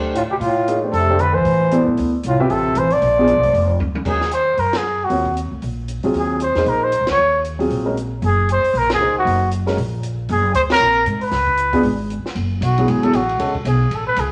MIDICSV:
0, 0, Header, 1, 7, 480
1, 0, Start_track
1, 0, Tempo, 259516
1, 1724, Time_signature, 4, 2, 24, 8
1, 26483, End_track
2, 0, Start_track
2, 0, Title_t, "Trumpet"
2, 0, Program_c, 0, 56
2, 297, Note_on_c, 0, 65, 71
2, 421, Note_off_c, 0, 65, 0
2, 568, Note_on_c, 0, 67, 68
2, 655, Note_off_c, 0, 67, 0
2, 757, Note_on_c, 0, 65, 84
2, 1470, Note_off_c, 0, 65, 0
2, 1728, Note_on_c, 0, 69, 96
2, 2228, Note_on_c, 0, 71, 90
2, 2256, Note_off_c, 0, 69, 0
2, 2486, Note_on_c, 0, 72, 99
2, 2514, Note_off_c, 0, 71, 0
2, 3450, Note_off_c, 0, 72, 0
2, 4207, Note_on_c, 0, 65, 80
2, 4470, Note_on_c, 0, 67, 78
2, 4498, Note_off_c, 0, 65, 0
2, 4646, Note_on_c, 0, 69, 92
2, 4674, Note_off_c, 0, 67, 0
2, 5149, Note_on_c, 0, 72, 94
2, 5177, Note_off_c, 0, 69, 0
2, 5412, Note_on_c, 0, 74, 97
2, 5440, Note_off_c, 0, 72, 0
2, 7039, Note_off_c, 0, 74, 0
2, 7543, Note_on_c, 0, 68, 83
2, 7973, Note_off_c, 0, 68, 0
2, 8021, Note_on_c, 0, 72, 86
2, 8502, Note_on_c, 0, 70, 81
2, 8529, Note_off_c, 0, 72, 0
2, 8828, Note_on_c, 0, 68, 88
2, 8856, Note_off_c, 0, 70, 0
2, 9332, Note_on_c, 0, 66, 73
2, 9360, Note_off_c, 0, 68, 0
2, 9962, Note_off_c, 0, 66, 0
2, 11422, Note_on_c, 0, 68, 76
2, 11839, Note_off_c, 0, 68, 0
2, 11880, Note_on_c, 0, 72, 86
2, 12373, Note_on_c, 0, 70, 91
2, 12401, Note_off_c, 0, 72, 0
2, 12649, Note_on_c, 0, 72, 101
2, 12676, Note_off_c, 0, 70, 0
2, 13105, Note_off_c, 0, 72, 0
2, 13153, Note_on_c, 0, 73, 89
2, 13749, Note_off_c, 0, 73, 0
2, 15264, Note_on_c, 0, 68, 92
2, 15678, Note_off_c, 0, 68, 0
2, 15766, Note_on_c, 0, 72, 96
2, 16234, Note_on_c, 0, 70, 94
2, 16262, Note_off_c, 0, 72, 0
2, 16476, Note_off_c, 0, 70, 0
2, 16529, Note_on_c, 0, 68, 87
2, 16931, Note_off_c, 0, 68, 0
2, 16990, Note_on_c, 0, 66, 73
2, 17583, Note_off_c, 0, 66, 0
2, 19075, Note_on_c, 0, 68, 98
2, 19496, Note_off_c, 0, 68, 0
2, 19522, Note_on_c, 0, 72, 97
2, 19644, Note_off_c, 0, 72, 0
2, 19828, Note_on_c, 0, 70, 104
2, 20435, Note_off_c, 0, 70, 0
2, 20752, Note_on_c, 0, 71, 91
2, 22304, Note_off_c, 0, 71, 0
2, 23377, Note_on_c, 0, 66, 60
2, 23853, Note_on_c, 0, 68, 70
2, 23881, Note_off_c, 0, 66, 0
2, 24116, Note_on_c, 0, 69, 80
2, 24144, Note_off_c, 0, 68, 0
2, 24337, Note_on_c, 0, 66, 66
2, 24365, Note_off_c, 0, 69, 0
2, 25073, Note_off_c, 0, 66, 0
2, 25298, Note_on_c, 0, 68, 74
2, 25809, Note_on_c, 0, 69, 68
2, 25836, Note_off_c, 0, 68, 0
2, 26018, Note_off_c, 0, 69, 0
2, 26030, Note_on_c, 0, 71, 89
2, 26268, Note_on_c, 0, 68, 66
2, 26296, Note_off_c, 0, 71, 0
2, 26483, Note_off_c, 0, 68, 0
2, 26483, End_track
3, 0, Start_track
3, 0, Title_t, "Upright piano"
3, 0, Program_c, 1, 0
3, 0, Note_on_c, 1, 57, 75
3, 0, Note_on_c, 1, 62, 63
3, 0, Note_on_c, 1, 67, 67
3, 0, Note_on_c, 1, 72, 83
3, 232, Note_off_c, 1, 57, 0
3, 234, Note_off_c, 1, 62, 0
3, 241, Note_off_c, 1, 72, 0
3, 242, Note_off_c, 1, 67, 0
3, 1251, Note_on_c, 1, 58, 54
3, 1260, Note_on_c, 1, 63, 53
3, 1263, Note_on_c, 1, 68, 52
3, 1275, Note_on_c, 1, 73, 58
3, 1501, Note_off_c, 1, 58, 0
3, 1506, Note_off_c, 1, 63, 0
3, 1507, Note_off_c, 1, 68, 0
3, 1513, Note_off_c, 1, 73, 0
3, 1544, Note_on_c, 1, 57, 57
3, 1546, Note_on_c, 1, 62, 52
3, 1549, Note_on_c, 1, 67, 52
3, 1558, Note_on_c, 1, 72, 59
3, 1959, Note_off_c, 1, 57, 0
3, 1960, Note_off_c, 1, 62, 0
3, 1962, Note_off_c, 1, 67, 0
3, 1966, Note_off_c, 1, 72, 0
3, 2019, Note_on_c, 1, 57, 71
3, 2028, Note_on_c, 1, 62, 66
3, 2035, Note_on_c, 1, 67, 67
3, 2043, Note_on_c, 1, 72, 86
3, 2191, Note_off_c, 1, 57, 0
3, 2195, Note_off_c, 1, 62, 0
3, 2199, Note_off_c, 1, 67, 0
3, 2203, Note_off_c, 1, 72, 0
3, 3176, Note_on_c, 1, 59, 73
3, 3192, Note_on_c, 1, 64, 67
3, 3194, Note_on_c, 1, 69, 61
3, 3196, Note_on_c, 1, 74, 72
3, 3880, Note_off_c, 1, 59, 0
3, 3888, Note_off_c, 1, 64, 0
3, 3890, Note_off_c, 1, 69, 0
3, 3890, Note_off_c, 1, 74, 0
3, 4437, Note_on_c, 1, 60, 81
3, 4439, Note_on_c, 1, 65, 77
3, 4442, Note_on_c, 1, 76, 87
3, 4444, Note_on_c, 1, 71, 74
3, 5066, Note_off_c, 1, 60, 0
3, 5067, Note_off_c, 1, 65, 0
3, 5068, Note_off_c, 1, 76, 0
3, 5070, Note_off_c, 1, 71, 0
3, 5889, Note_on_c, 1, 62, 67
3, 5892, Note_on_c, 1, 59, 79
3, 5902, Note_on_c, 1, 65, 71
3, 5907, Note_on_c, 1, 68, 83
3, 6053, Note_off_c, 1, 62, 0
3, 6054, Note_off_c, 1, 59, 0
3, 6059, Note_off_c, 1, 65, 0
3, 6062, Note_off_c, 1, 68, 0
3, 7507, Note_on_c, 1, 56, 49
3, 7512, Note_on_c, 1, 61, 47
3, 7513, Note_on_c, 1, 66, 45
3, 7533, Note_on_c, 1, 70, 56
3, 7761, Note_off_c, 1, 56, 0
3, 7763, Note_off_c, 1, 61, 0
3, 7764, Note_off_c, 1, 66, 0
3, 7774, Note_off_c, 1, 70, 0
3, 9413, Note_on_c, 1, 60, 47
3, 9429, Note_on_c, 1, 65, 48
3, 9429, Note_on_c, 1, 73, 56
3, 9433, Note_on_c, 1, 70, 46
3, 9677, Note_off_c, 1, 60, 0
3, 9686, Note_off_c, 1, 65, 0
3, 9686, Note_off_c, 1, 73, 0
3, 9688, Note_off_c, 1, 70, 0
3, 11163, Note_on_c, 1, 54, 66
3, 11178, Note_on_c, 1, 60, 60
3, 11181, Note_on_c, 1, 65, 65
3, 11189, Note_on_c, 1, 68, 76
3, 11800, Note_off_c, 1, 54, 0
3, 11807, Note_off_c, 1, 60, 0
3, 11809, Note_off_c, 1, 65, 0
3, 11813, Note_off_c, 1, 68, 0
3, 12136, Note_on_c, 1, 58, 69
3, 12143, Note_on_c, 1, 63, 66
3, 12161, Note_on_c, 1, 68, 62
3, 12162, Note_on_c, 1, 72, 73
3, 12766, Note_off_c, 1, 58, 0
3, 12770, Note_off_c, 1, 63, 0
3, 12779, Note_off_c, 1, 68, 0
3, 12779, Note_off_c, 1, 72, 0
3, 14033, Note_on_c, 1, 54, 70
3, 14041, Note_on_c, 1, 60, 64
3, 14054, Note_on_c, 1, 68, 80
3, 14055, Note_on_c, 1, 65, 64
3, 14488, Note_off_c, 1, 54, 0
3, 14491, Note_off_c, 1, 60, 0
3, 14498, Note_off_c, 1, 68, 0
3, 14499, Note_off_c, 1, 65, 0
3, 14519, Note_on_c, 1, 56, 68
3, 14535, Note_on_c, 1, 70, 73
3, 14538, Note_on_c, 1, 61, 60
3, 14538, Note_on_c, 1, 66, 60
3, 14696, Note_off_c, 1, 56, 0
3, 14704, Note_off_c, 1, 70, 0
3, 14706, Note_off_c, 1, 61, 0
3, 14706, Note_off_c, 1, 66, 0
3, 16655, Note_on_c, 1, 58, 56
3, 16662, Note_on_c, 1, 63, 46
3, 16665, Note_on_c, 1, 68, 48
3, 16674, Note_on_c, 1, 72, 64
3, 17348, Note_off_c, 1, 58, 0
3, 17351, Note_off_c, 1, 63, 0
3, 17353, Note_off_c, 1, 68, 0
3, 17358, Note_off_c, 1, 72, 0
3, 17872, Note_on_c, 1, 56, 68
3, 17874, Note_on_c, 1, 61, 61
3, 17875, Note_on_c, 1, 66, 62
3, 17887, Note_on_c, 1, 70, 79
3, 18049, Note_off_c, 1, 56, 0
3, 18050, Note_off_c, 1, 61, 0
3, 18050, Note_off_c, 1, 66, 0
3, 18056, Note_off_c, 1, 70, 0
3, 19791, Note_on_c, 1, 60, 68
3, 19801, Note_on_c, 1, 65, 62
3, 19810, Note_on_c, 1, 70, 66
3, 19814, Note_on_c, 1, 73, 77
3, 19965, Note_off_c, 1, 60, 0
3, 19970, Note_off_c, 1, 65, 0
3, 19974, Note_off_c, 1, 70, 0
3, 19976, Note_off_c, 1, 73, 0
3, 21697, Note_on_c, 1, 59, 77
3, 21706, Note_on_c, 1, 65, 70
3, 21710, Note_on_c, 1, 62, 72
3, 21712, Note_on_c, 1, 68, 86
3, 21874, Note_off_c, 1, 59, 0
3, 21878, Note_off_c, 1, 65, 0
3, 21881, Note_off_c, 1, 62, 0
3, 21881, Note_off_c, 1, 68, 0
3, 23640, Note_on_c, 1, 54, 64
3, 23643, Note_on_c, 1, 64, 57
3, 23645, Note_on_c, 1, 59, 61
3, 23662, Note_on_c, 1, 68, 73
3, 24076, Note_off_c, 1, 54, 0
3, 24078, Note_off_c, 1, 64, 0
3, 24079, Note_off_c, 1, 59, 0
3, 24087, Note_off_c, 1, 68, 0
3, 24115, Note_on_c, 1, 59, 63
3, 24119, Note_on_c, 1, 54, 63
3, 24134, Note_on_c, 1, 64, 58
3, 24143, Note_on_c, 1, 68, 72
3, 24280, Note_off_c, 1, 59, 0
3, 24282, Note_off_c, 1, 54, 0
3, 24289, Note_off_c, 1, 64, 0
3, 24293, Note_off_c, 1, 68, 0
3, 24768, Note_on_c, 1, 56, 64
3, 24777, Note_on_c, 1, 61, 57
3, 24781, Note_on_c, 1, 69, 72
3, 24786, Note_on_c, 1, 66, 61
3, 25021, Note_off_c, 1, 56, 0
3, 25025, Note_off_c, 1, 61, 0
3, 25027, Note_off_c, 1, 69, 0
3, 25029, Note_off_c, 1, 66, 0
3, 26483, End_track
4, 0, Start_track
4, 0, Title_t, "Bass clarinet"
4, 0, Program_c, 2, 71
4, 267, Note_on_c, 2, 45, 65
4, 397, Note_off_c, 2, 45, 0
4, 580, Note_on_c, 2, 47, 68
4, 665, Note_off_c, 2, 47, 0
4, 771, Note_on_c, 2, 45, 72
4, 1477, Note_off_c, 2, 45, 0
4, 1708, Note_on_c, 2, 48, 83
4, 2186, Note_on_c, 2, 50, 87
4, 2214, Note_off_c, 2, 48, 0
4, 2470, Note_on_c, 2, 52, 84
4, 2498, Note_off_c, 2, 50, 0
4, 3442, Note_off_c, 2, 52, 0
4, 4176, Note_on_c, 2, 45, 73
4, 4467, Note_on_c, 2, 47, 74
4, 4495, Note_off_c, 2, 45, 0
4, 4667, Note_on_c, 2, 48, 81
4, 4695, Note_off_c, 2, 47, 0
4, 5134, Note_on_c, 2, 52, 87
4, 5161, Note_off_c, 2, 48, 0
4, 5376, Note_on_c, 2, 53, 89
4, 5403, Note_off_c, 2, 52, 0
4, 7021, Note_off_c, 2, 53, 0
4, 26483, End_track
5, 0, Start_track
5, 0, Title_t, "Upright bass"
5, 0, Program_c, 3, 32
5, 0, Note_on_c, 3, 38, 84
5, 702, Note_off_c, 3, 38, 0
5, 738, Note_on_c, 3, 45, 82
5, 1663, Note_off_c, 3, 45, 0
5, 1710, Note_on_c, 3, 41, 79
5, 2428, Note_off_c, 3, 41, 0
5, 2483, Note_on_c, 3, 37, 70
5, 2669, Note_off_c, 3, 37, 0
5, 2677, Note_on_c, 3, 45, 80
5, 3393, Note_off_c, 3, 45, 0
5, 3454, Note_on_c, 3, 45, 69
5, 3637, Note_off_c, 3, 45, 0
5, 3667, Note_on_c, 3, 38, 88
5, 4106, Note_off_c, 3, 38, 0
5, 4150, Note_on_c, 3, 36, 75
5, 4589, Note_off_c, 3, 36, 0
5, 4622, Note_on_c, 3, 33, 78
5, 5065, Note_off_c, 3, 33, 0
5, 5105, Note_on_c, 3, 33, 79
5, 5548, Note_off_c, 3, 33, 0
5, 5585, Note_on_c, 3, 34, 93
5, 6178, Note_off_c, 3, 34, 0
5, 6222, Note_on_c, 3, 35, 65
5, 6370, Note_off_c, 3, 35, 0
5, 6377, Note_on_c, 3, 32, 65
5, 6519, Note_off_c, 3, 32, 0
5, 6530, Note_on_c, 3, 29, 80
5, 6983, Note_off_c, 3, 29, 0
5, 7015, Note_on_c, 3, 38, 73
5, 7467, Note_off_c, 3, 38, 0
5, 7500, Note_on_c, 3, 39, 76
5, 8418, Note_off_c, 3, 39, 0
5, 8455, Note_on_c, 3, 42, 75
5, 9377, Note_off_c, 3, 42, 0
5, 9430, Note_on_c, 3, 39, 79
5, 10142, Note_off_c, 3, 39, 0
5, 10198, Note_on_c, 3, 38, 67
5, 10381, Note_off_c, 3, 38, 0
5, 10400, Note_on_c, 3, 34, 75
5, 11108, Note_off_c, 3, 34, 0
5, 11170, Note_on_c, 3, 37, 67
5, 11342, Note_off_c, 3, 37, 0
5, 11353, Note_on_c, 3, 39, 85
5, 12065, Note_off_c, 3, 39, 0
5, 12116, Note_on_c, 3, 40, 69
5, 12293, Note_off_c, 3, 40, 0
5, 12304, Note_on_c, 3, 34, 78
5, 12906, Note_off_c, 3, 34, 0
5, 12959, Note_on_c, 3, 37, 58
5, 13098, Note_off_c, 3, 37, 0
5, 13109, Note_on_c, 3, 38, 62
5, 13262, Note_off_c, 3, 38, 0
5, 13271, Note_on_c, 3, 39, 80
5, 14186, Note_off_c, 3, 39, 0
5, 14240, Note_on_c, 3, 34, 80
5, 15149, Note_off_c, 3, 34, 0
5, 15203, Note_on_c, 3, 30, 86
5, 15907, Note_off_c, 3, 30, 0
5, 16158, Note_on_c, 3, 34, 80
5, 16601, Note_off_c, 3, 34, 0
5, 16629, Note_on_c, 3, 37, 70
5, 17076, Note_off_c, 3, 37, 0
5, 17109, Note_on_c, 3, 30, 89
5, 18019, Note_off_c, 3, 30, 0
5, 18072, Note_on_c, 3, 34, 85
5, 18979, Note_off_c, 3, 34, 0
5, 19038, Note_on_c, 3, 30, 90
5, 19476, Note_off_c, 3, 30, 0
5, 19496, Note_on_c, 3, 38, 74
5, 19944, Note_off_c, 3, 38, 0
5, 19974, Note_on_c, 3, 34, 79
5, 20422, Note_off_c, 3, 34, 0
5, 20457, Note_on_c, 3, 44, 79
5, 20903, Note_off_c, 3, 44, 0
5, 20925, Note_on_c, 3, 37, 89
5, 21839, Note_off_c, 3, 37, 0
5, 21887, Note_on_c, 3, 32, 83
5, 22597, Note_off_c, 3, 32, 0
5, 22845, Note_on_c, 3, 30, 77
5, 23312, Note_off_c, 3, 30, 0
5, 23321, Note_on_c, 3, 35, 84
5, 23790, Note_off_c, 3, 35, 0
5, 23808, Note_on_c, 3, 32, 72
5, 24273, Note_off_c, 3, 32, 0
5, 24289, Note_on_c, 3, 33, 84
5, 24752, Note_off_c, 3, 33, 0
5, 24766, Note_on_c, 3, 37, 74
5, 25230, Note_off_c, 3, 37, 0
5, 25240, Note_on_c, 3, 35, 84
5, 25707, Note_off_c, 3, 35, 0
5, 26207, Note_on_c, 3, 37, 87
5, 26483, Note_off_c, 3, 37, 0
5, 26483, End_track
6, 0, Start_track
6, 0, Title_t, "Muted upright bass strokes"
6, 22645, Note_on_c, 9, 29, 37
6, 22830, Note_off_c, 9, 29, 0
6, 26483, End_track
7, 0, Start_track
7, 0, Title_t, "Drums"
7, 281, Note_on_c, 9, 42, 52
7, 466, Note_off_c, 9, 42, 0
7, 754, Note_on_c, 9, 46, 44
7, 939, Note_off_c, 9, 46, 0
7, 1252, Note_on_c, 9, 42, 55
7, 1437, Note_off_c, 9, 42, 0
7, 1725, Note_on_c, 9, 46, 48
7, 1910, Note_off_c, 9, 46, 0
7, 2197, Note_on_c, 9, 42, 59
7, 2382, Note_off_c, 9, 42, 0
7, 2680, Note_on_c, 9, 46, 45
7, 2865, Note_off_c, 9, 46, 0
7, 3167, Note_on_c, 9, 42, 55
7, 3352, Note_off_c, 9, 42, 0
7, 3645, Note_on_c, 9, 46, 44
7, 3830, Note_off_c, 9, 46, 0
7, 4129, Note_on_c, 9, 42, 57
7, 4314, Note_off_c, 9, 42, 0
7, 4618, Note_on_c, 9, 46, 44
7, 4803, Note_off_c, 9, 46, 0
7, 5086, Note_on_c, 9, 42, 54
7, 5271, Note_off_c, 9, 42, 0
7, 5369, Note_on_c, 9, 46, 39
7, 5554, Note_off_c, 9, 46, 0
7, 5579, Note_on_c, 9, 46, 46
7, 5764, Note_off_c, 9, 46, 0
7, 6056, Note_on_c, 9, 42, 52
7, 6241, Note_off_c, 9, 42, 0
7, 6346, Note_on_c, 9, 46, 42
7, 6531, Note_off_c, 9, 46, 0
7, 6553, Note_on_c, 9, 46, 47
7, 6738, Note_off_c, 9, 46, 0
7, 7030, Note_on_c, 9, 48, 49
7, 7215, Note_off_c, 9, 48, 0
7, 7310, Note_on_c, 9, 48, 62
7, 7495, Note_off_c, 9, 48, 0
7, 7495, Note_on_c, 9, 36, 71
7, 7500, Note_on_c, 9, 49, 64
7, 7680, Note_off_c, 9, 36, 0
7, 7685, Note_off_c, 9, 49, 0
7, 7792, Note_on_c, 9, 38, 45
7, 7975, Note_on_c, 9, 42, 52
7, 7977, Note_off_c, 9, 38, 0
7, 8160, Note_off_c, 9, 42, 0
7, 8461, Note_on_c, 9, 46, 43
7, 8646, Note_off_c, 9, 46, 0
7, 8749, Note_on_c, 9, 51, 61
7, 8751, Note_on_c, 9, 38, 81
7, 8934, Note_off_c, 9, 51, 0
7, 8936, Note_off_c, 9, 38, 0
7, 9429, Note_on_c, 9, 46, 42
7, 9614, Note_off_c, 9, 46, 0
7, 9717, Note_on_c, 9, 36, 47
7, 9902, Note_off_c, 9, 36, 0
7, 9925, Note_on_c, 9, 42, 52
7, 10110, Note_off_c, 9, 42, 0
7, 10392, Note_on_c, 9, 46, 40
7, 10577, Note_off_c, 9, 46, 0
7, 10876, Note_on_c, 9, 42, 51
7, 11061, Note_off_c, 9, 42, 0
7, 11152, Note_on_c, 9, 46, 35
7, 11337, Note_off_c, 9, 46, 0
7, 11356, Note_on_c, 9, 46, 46
7, 11541, Note_off_c, 9, 46, 0
7, 11835, Note_on_c, 9, 42, 56
7, 12020, Note_off_c, 9, 42, 0
7, 12118, Note_on_c, 9, 46, 37
7, 12120, Note_on_c, 9, 38, 40
7, 12303, Note_off_c, 9, 46, 0
7, 12305, Note_off_c, 9, 38, 0
7, 12319, Note_on_c, 9, 46, 42
7, 12504, Note_off_c, 9, 46, 0
7, 12796, Note_on_c, 9, 42, 53
7, 12981, Note_off_c, 9, 42, 0
7, 13073, Note_on_c, 9, 51, 64
7, 13075, Note_on_c, 9, 38, 71
7, 13258, Note_off_c, 9, 51, 0
7, 13260, Note_off_c, 9, 38, 0
7, 13769, Note_on_c, 9, 42, 54
7, 13954, Note_off_c, 9, 42, 0
7, 14057, Note_on_c, 9, 46, 38
7, 14242, Note_off_c, 9, 46, 0
7, 14248, Note_on_c, 9, 46, 44
7, 14433, Note_off_c, 9, 46, 0
7, 14743, Note_on_c, 9, 42, 53
7, 14928, Note_off_c, 9, 42, 0
7, 15205, Note_on_c, 9, 46, 46
7, 15390, Note_off_c, 9, 46, 0
7, 15696, Note_on_c, 9, 42, 53
7, 15881, Note_off_c, 9, 42, 0
7, 15984, Note_on_c, 9, 46, 39
7, 16169, Note_off_c, 9, 46, 0
7, 16179, Note_on_c, 9, 46, 44
7, 16364, Note_off_c, 9, 46, 0
7, 16457, Note_on_c, 9, 51, 69
7, 16459, Note_on_c, 9, 38, 81
7, 16642, Note_off_c, 9, 51, 0
7, 16644, Note_off_c, 9, 38, 0
7, 17140, Note_on_c, 9, 46, 46
7, 17325, Note_off_c, 9, 46, 0
7, 17594, Note_on_c, 9, 42, 55
7, 17779, Note_off_c, 9, 42, 0
7, 17888, Note_on_c, 9, 46, 40
7, 17890, Note_on_c, 9, 38, 38
7, 18073, Note_off_c, 9, 46, 0
7, 18075, Note_off_c, 9, 38, 0
7, 18086, Note_on_c, 9, 46, 47
7, 18271, Note_off_c, 9, 46, 0
7, 18551, Note_on_c, 9, 42, 54
7, 18736, Note_off_c, 9, 42, 0
7, 19024, Note_on_c, 9, 46, 45
7, 19209, Note_off_c, 9, 46, 0
7, 19501, Note_on_c, 9, 42, 58
7, 19686, Note_off_c, 9, 42, 0
7, 19789, Note_on_c, 9, 51, 70
7, 19791, Note_on_c, 9, 38, 82
7, 19974, Note_off_c, 9, 51, 0
7, 19975, Note_off_c, 9, 38, 0
7, 20454, Note_on_c, 9, 42, 55
7, 20639, Note_off_c, 9, 42, 0
7, 20734, Note_on_c, 9, 46, 39
7, 20919, Note_off_c, 9, 46, 0
7, 20926, Note_on_c, 9, 46, 46
7, 20928, Note_on_c, 9, 38, 39
7, 21111, Note_off_c, 9, 46, 0
7, 21113, Note_off_c, 9, 38, 0
7, 21210, Note_on_c, 9, 36, 51
7, 21395, Note_off_c, 9, 36, 0
7, 21405, Note_on_c, 9, 42, 56
7, 21590, Note_off_c, 9, 42, 0
7, 21693, Note_on_c, 9, 46, 41
7, 21694, Note_on_c, 9, 36, 50
7, 21878, Note_off_c, 9, 46, 0
7, 21879, Note_off_c, 9, 36, 0
7, 21883, Note_on_c, 9, 46, 48
7, 22068, Note_off_c, 9, 46, 0
7, 22381, Note_on_c, 9, 42, 52
7, 22566, Note_off_c, 9, 42, 0
7, 22672, Note_on_c, 9, 38, 48
7, 22850, Note_on_c, 9, 51, 54
7, 22857, Note_off_c, 9, 38, 0
7, 23035, Note_off_c, 9, 51, 0
7, 23337, Note_on_c, 9, 44, 54
7, 23337, Note_on_c, 9, 51, 68
7, 23522, Note_off_c, 9, 44, 0
7, 23522, Note_off_c, 9, 51, 0
7, 23631, Note_on_c, 9, 51, 45
7, 23816, Note_off_c, 9, 51, 0
7, 23820, Note_on_c, 9, 51, 56
7, 24005, Note_off_c, 9, 51, 0
7, 24101, Note_on_c, 9, 51, 45
7, 24286, Note_off_c, 9, 51, 0
7, 24289, Note_on_c, 9, 44, 45
7, 24289, Note_on_c, 9, 51, 63
7, 24473, Note_off_c, 9, 44, 0
7, 24473, Note_off_c, 9, 51, 0
7, 24584, Note_on_c, 9, 51, 41
7, 24769, Note_off_c, 9, 51, 0
7, 24774, Note_on_c, 9, 51, 61
7, 24959, Note_off_c, 9, 51, 0
7, 25056, Note_on_c, 9, 36, 50
7, 25241, Note_off_c, 9, 36, 0
7, 25248, Note_on_c, 9, 44, 61
7, 25248, Note_on_c, 9, 51, 63
7, 25433, Note_off_c, 9, 44, 0
7, 25433, Note_off_c, 9, 51, 0
7, 25728, Note_on_c, 9, 51, 61
7, 25912, Note_off_c, 9, 51, 0
7, 26196, Note_on_c, 9, 44, 52
7, 26196, Note_on_c, 9, 51, 64
7, 26381, Note_off_c, 9, 44, 0
7, 26381, Note_off_c, 9, 51, 0
7, 26483, End_track
0, 0, End_of_file